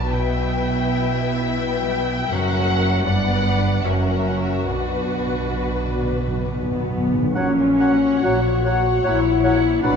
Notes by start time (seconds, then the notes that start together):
Already playing: B1 B2 F#3 D4 F#4 B4 D5 A5
0.10 B2 B3 E4 E5 G5
0.36 B3
0.60 E4
0.85 B4
1.09 E4
1.33 B4
1.57 B3 G5
1.82 G3
2.06 B3
2.31 F#1 F#2 C#4 F#4 A#4 F#5
2.56 C#4
2.81 E4 A#4
3.06 G1 G2 B3 D4 B4 D5 F#5
3.32 B3
3.57 D4 B4
3.83 F#1 F#2 C#4 F#4 A#4 E5
3.93 F#5
4.02 E5
4.09 C#4 F#5
4.18 E5
4.26 F#5
4.36 E5
4.40 F#4 A#4
4.68 B1 B2 D4 B4
4.86 B2
4.99 D4
5.03 B2
5.11 B2
5.19 B2
5.27 B2 F#4
5.34 B2
5.42 B2
5.50 B2
5.56 B2 B4
5.67 B2
5.75 B2
5.84 B2 D5
5.93 B2
6.01 B2
6.10 B2
6.15 B2 B4
6.28 B2
6.37 B2
6.45 B2 B3 D4
6.53 B2
6.62 B2
6.71 B2
6.76 B2 F#3
6.89 B2
6.97 B2
7.06 B2 D4
7.14 B2
7.22 B2
7.35 A#1 A#2 F#3 C#4 C#5 F#5
7.58 A#3
7.79 F#3 C#4 C#5 F#5
8.04 F#4
8.23 A#1 A#2 F#3 F#4 C#5 F#5
8.46 F#4
8.64 F#3 C#5 F#5
8.86 C#6
9.04 A#1 A#2 F#3 E4 C#5 F#5
9.25 F#4
9.44 F#3 C#4 C#5 F#5
9.64 A#3
9.82 B1 B2 F#3 D4 B4 D5 F#5 B5